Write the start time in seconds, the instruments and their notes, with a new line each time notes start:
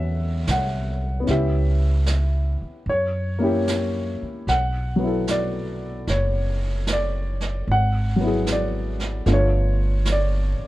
Already playing: upright bass E2, grand piano F#3 B3 C#4 E4 F#4 G#4 E5 F#5 G#5
0.47 upright bass C2, grand piano F#5, snare, hi-hat pedal
1.20 grand piano B3 C#4
1.27 upright bass C#2, grand piano E4 G4, brush sweep, snare
1.31 grand piano E5
2.06 snare, hi-hat pedal
2.62 muted upright bass stroke
2.86 upright bass F#2, grand piano C#5, brush sweep
3.39 grand piano A#3 C#4 E4
3.44 grand piano G4
3.68 snare, hi-hat pedal
4.22 muted upright bass stroke
4.47 upright bass B1, grand piano F#5, brush sweep, snare
4.96 grand piano F#3 B3
5.04 grand piano E4 A4
5.27 grand piano D5, snare, hi-hat pedal
6.07 upright bass F#1, grand piano C#5, brush sweep, snare
6.87 snare, hi-hat pedal
6.93 grand piano D5
7.41 snare
7.66 upright bass G#1, brush sweep
7.72 grand piano F#5
8.16 grand piano F#3
8.21 grand piano B3 E4
8.27 grand piano G#4
8.47 snare, hi-hat pedal
8.52 grand piano D5
9.00 snare
9.26 upright bass G1, grand piano A3 B3 D4 F4, brush sweep, snare
9.33 grand piano C#5
10.05 snare, hi-hat pedal
10.12 grand piano D5
10.59 muted upright bass stroke